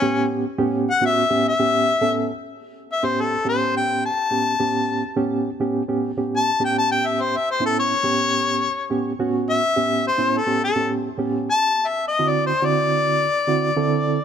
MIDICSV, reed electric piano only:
0, 0, Header, 1, 2, 480
1, 0, Start_track
1, 0, Tempo, 572519
1, 18, Time_signature, 4, 2, 24, 8
1, 11944, End_track
2, 0, Start_track
2, 0, Title_t, "Reed electric piano"
2, 0, Program_c, 0, 4
2, 12, Note_on_c, 0, 45, 102
2, 16, Note_on_c, 0, 59, 93
2, 17, Note_on_c, 0, 61, 89
2, 19, Note_on_c, 0, 67, 108
2, 370, Note_off_c, 0, 45, 0
2, 371, Note_off_c, 0, 59, 0
2, 372, Note_off_c, 0, 61, 0
2, 373, Note_off_c, 0, 67, 0
2, 488, Note_on_c, 0, 45, 107
2, 489, Note_on_c, 0, 59, 94
2, 489, Note_on_c, 0, 67, 115
2, 490, Note_on_c, 0, 61, 98
2, 758, Note_off_c, 0, 45, 0
2, 759, Note_off_c, 0, 59, 0
2, 759, Note_off_c, 0, 61, 0
2, 759, Note_off_c, 0, 67, 0
2, 851, Note_on_c, 0, 45, 83
2, 852, Note_on_c, 0, 59, 71
2, 853, Note_on_c, 0, 61, 72
2, 856, Note_on_c, 0, 66, 93
2, 1031, Note_off_c, 0, 45, 0
2, 1032, Note_off_c, 0, 59, 0
2, 1032, Note_off_c, 0, 61, 0
2, 1033, Note_off_c, 0, 66, 0
2, 1092, Note_on_c, 0, 45, 79
2, 1093, Note_on_c, 0, 67, 88
2, 1094, Note_on_c, 0, 59, 75
2, 1095, Note_on_c, 0, 61, 75
2, 1272, Note_off_c, 0, 45, 0
2, 1272, Note_off_c, 0, 67, 0
2, 1273, Note_off_c, 0, 59, 0
2, 1273, Note_off_c, 0, 61, 0
2, 1335, Note_on_c, 0, 45, 79
2, 1339, Note_on_c, 0, 59, 73
2, 1340, Note_on_c, 0, 61, 73
2, 1340, Note_on_c, 0, 67, 90
2, 1602, Note_off_c, 0, 45, 0
2, 1604, Note_off_c, 0, 59, 0
2, 1605, Note_off_c, 0, 61, 0
2, 1605, Note_off_c, 0, 67, 0
2, 1688, Note_on_c, 0, 45, 85
2, 1689, Note_on_c, 0, 59, 77
2, 1690, Note_on_c, 0, 69, 90
2, 1693, Note_on_c, 0, 61, 76
2, 1934, Note_off_c, 0, 45, 0
2, 1934, Note_off_c, 0, 59, 0
2, 1935, Note_off_c, 0, 69, 0
2, 1936, Note_off_c, 0, 61, 0
2, 2541, Note_on_c, 0, 45, 72
2, 2541, Note_on_c, 0, 59, 65
2, 2543, Note_on_c, 0, 61, 64
2, 2543, Note_on_c, 0, 67, 78
2, 2805, Note_off_c, 0, 59, 0
2, 2806, Note_off_c, 0, 45, 0
2, 2806, Note_off_c, 0, 61, 0
2, 2807, Note_off_c, 0, 67, 0
2, 2890, Note_on_c, 0, 45, 80
2, 2890, Note_on_c, 0, 61, 70
2, 2894, Note_on_c, 0, 59, 70
2, 2897, Note_on_c, 0, 67, 93
2, 3425, Note_off_c, 0, 61, 0
2, 3426, Note_off_c, 0, 45, 0
2, 3427, Note_off_c, 0, 59, 0
2, 3429, Note_off_c, 0, 67, 0
2, 3613, Note_on_c, 0, 45, 67
2, 3613, Note_on_c, 0, 61, 57
2, 3616, Note_on_c, 0, 59, 61
2, 3619, Note_on_c, 0, 67, 75
2, 3794, Note_off_c, 0, 45, 0
2, 3794, Note_off_c, 0, 61, 0
2, 3796, Note_off_c, 0, 59, 0
2, 3797, Note_off_c, 0, 67, 0
2, 3853, Note_on_c, 0, 45, 81
2, 3854, Note_on_c, 0, 67, 88
2, 3856, Note_on_c, 0, 59, 71
2, 3856, Note_on_c, 0, 61, 69
2, 4212, Note_off_c, 0, 45, 0
2, 4212, Note_off_c, 0, 67, 0
2, 4213, Note_off_c, 0, 59, 0
2, 4213, Note_off_c, 0, 61, 0
2, 4331, Note_on_c, 0, 45, 97
2, 4332, Note_on_c, 0, 59, 89
2, 4332, Note_on_c, 0, 61, 96
2, 4334, Note_on_c, 0, 67, 113
2, 4601, Note_off_c, 0, 45, 0
2, 4602, Note_off_c, 0, 59, 0
2, 4602, Note_off_c, 0, 61, 0
2, 4603, Note_off_c, 0, 67, 0
2, 4697, Note_on_c, 0, 45, 90
2, 4697, Note_on_c, 0, 59, 85
2, 4699, Note_on_c, 0, 61, 81
2, 4702, Note_on_c, 0, 67, 100
2, 4876, Note_off_c, 0, 45, 0
2, 4876, Note_off_c, 0, 59, 0
2, 4877, Note_off_c, 0, 61, 0
2, 4878, Note_off_c, 0, 67, 0
2, 4932, Note_on_c, 0, 59, 81
2, 4934, Note_on_c, 0, 61, 79
2, 4935, Note_on_c, 0, 45, 89
2, 4937, Note_on_c, 0, 67, 98
2, 5113, Note_off_c, 0, 59, 0
2, 5114, Note_off_c, 0, 61, 0
2, 5115, Note_off_c, 0, 45, 0
2, 5116, Note_off_c, 0, 67, 0
2, 5175, Note_on_c, 0, 45, 75
2, 5176, Note_on_c, 0, 61, 67
2, 5177, Note_on_c, 0, 59, 67
2, 5179, Note_on_c, 0, 67, 79
2, 5444, Note_off_c, 0, 45, 0
2, 5444, Note_off_c, 0, 61, 0
2, 5445, Note_off_c, 0, 59, 0
2, 5446, Note_off_c, 0, 67, 0
2, 5532, Note_on_c, 0, 45, 81
2, 5536, Note_on_c, 0, 59, 70
2, 5536, Note_on_c, 0, 61, 71
2, 5539, Note_on_c, 0, 67, 93
2, 6156, Note_off_c, 0, 45, 0
2, 6158, Note_off_c, 0, 59, 0
2, 6158, Note_off_c, 0, 61, 0
2, 6159, Note_off_c, 0, 67, 0
2, 6373, Note_on_c, 0, 45, 74
2, 6374, Note_on_c, 0, 59, 68
2, 6381, Note_on_c, 0, 61, 66
2, 6381, Note_on_c, 0, 64, 79
2, 6643, Note_off_c, 0, 45, 0
2, 6643, Note_off_c, 0, 59, 0
2, 6647, Note_off_c, 0, 61, 0
2, 6647, Note_off_c, 0, 64, 0
2, 6735, Note_on_c, 0, 59, 73
2, 6738, Note_on_c, 0, 45, 84
2, 6739, Note_on_c, 0, 61, 70
2, 6740, Note_on_c, 0, 67, 91
2, 7268, Note_off_c, 0, 59, 0
2, 7270, Note_off_c, 0, 45, 0
2, 7271, Note_off_c, 0, 61, 0
2, 7271, Note_off_c, 0, 67, 0
2, 7462, Note_on_c, 0, 45, 77
2, 7462, Note_on_c, 0, 61, 75
2, 7463, Note_on_c, 0, 59, 75
2, 7467, Note_on_c, 0, 67, 91
2, 7640, Note_off_c, 0, 45, 0
2, 7640, Note_off_c, 0, 59, 0
2, 7640, Note_off_c, 0, 61, 0
2, 7642, Note_off_c, 0, 67, 0
2, 7709, Note_on_c, 0, 45, 97
2, 7709, Note_on_c, 0, 59, 82
2, 7710, Note_on_c, 0, 61, 88
2, 7712, Note_on_c, 0, 66, 101
2, 8060, Note_off_c, 0, 45, 0
2, 8060, Note_off_c, 0, 59, 0
2, 8060, Note_off_c, 0, 61, 0
2, 8061, Note_off_c, 0, 66, 0
2, 8186, Note_on_c, 0, 59, 76
2, 8186, Note_on_c, 0, 61, 80
2, 8186, Note_on_c, 0, 67, 86
2, 8187, Note_on_c, 0, 45, 79
2, 8449, Note_off_c, 0, 45, 0
2, 8449, Note_off_c, 0, 59, 0
2, 8449, Note_off_c, 0, 61, 0
2, 8449, Note_off_c, 0, 67, 0
2, 8535, Note_on_c, 0, 45, 74
2, 8535, Note_on_c, 0, 59, 71
2, 8538, Note_on_c, 0, 61, 72
2, 8541, Note_on_c, 0, 64, 80
2, 8715, Note_off_c, 0, 45, 0
2, 8715, Note_off_c, 0, 59, 0
2, 8716, Note_off_c, 0, 61, 0
2, 8718, Note_off_c, 0, 64, 0
2, 8776, Note_on_c, 0, 45, 72
2, 8780, Note_on_c, 0, 59, 70
2, 8780, Note_on_c, 0, 67, 85
2, 8782, Note_on_c, 0, 61, 71
2, 8955, Note_off_c, 0, 45, 0
2, 8957, Note_off_c, 0, 67, 0
2, 8958, Note_off_c, 0, 59, 0
2, 8958, Note_off_c, 0, 61, 0
2, 9015, Note_on_c, 0, 45, 76
2, 9018, Note_on_c, 0, 59, 64
2, 9019, Note_on_c, 0, 67, 79
2, 9020, Note_on_c, 0, 61, 67
2, 9283, Note_off_c, 0, 45, 0
2, 9285, Note_off_c, 0, 59, 0
2, 9285, Note_off_c, 0, 67, 0
2, 9286, Note_off_c, 0, 61, 0
2, 9373, Note_on_c, 0, 45, 93
2, 9377, Note_on_c, 0, 59, 79
2, 9381, Note_on_c, 0, 61, 82
2, 9381, Note_on_c, 0, 67, 97
2, 9617, Note_off_c, 0, 45, 0
2, 9619, Note_off_c, 0, 59, 0
2, 9621, Note_off_c, 0, 61, 0
2, 9621, Note_off_c, 0, 67, 0
2, 10219, Note_on_c, 0, 64, 65
2, 10220, Note_on_c, 0, 60, 65
2, 10220, Note_on_c, 0, 66, 76
2, 10221, Note_on_c, 0, 50, 69
2, 10485, Note_off_c, 0, 60, 0
2, 10485, Note_off_c, 0, 64, 0
2, 10486, Note_off_c, 0, 50, 0
2, 10486, Note_off_c, 0, 66, 0
2, 10578, Note_on_c, 0, 60, 72
2, 10580, Note_on_c, 0, 50, 82
2, 10581, Note_on_c, 0, 64, 73
2, 10582, Note_on_c, 0, 66, 83
2, 11109, Note_off_c, 0, 60, 0
2, 11110, Note_off_c, 0, 50, 0
2, 11110, Note_off_c, 0, 64, 0
2, 11111, Note_off_c, 0, 66, 0
2, 11296, Note_on_c, 0, 50, 73
2, 11297, Note_on_c, 0, 60, 73
2, 11298, Note_on_c, 0, 64, 77
2, 11302, Note_on_c, 0, 66, 91
2, 11476, Note_off_c, 0, 50, 0
2, 11476, Note_off_c, 0, 60, 0
2, 11477, Note_off_c, 0, 64, 0
2, 11479, Note_off_c, 0, 66, 0
2, 11541, Note_on_c, 0, 50, 95
2, 11541, Note_on_c, 0, 64, 85
2, 11543, Note_on_c, 0, 60, 85
2, 11545, Note_on_c, 0, 69, 103
2, 11895, Note_off_c, 0, 50, 0
2, 11895, Note_off_c, 0, 60, 0
2, 11895, Note_off_c, 0, 64, 0
2, 11896, Note_off_c, 0, 69, 0
2, 11944, End_track
0, 0, End_of_file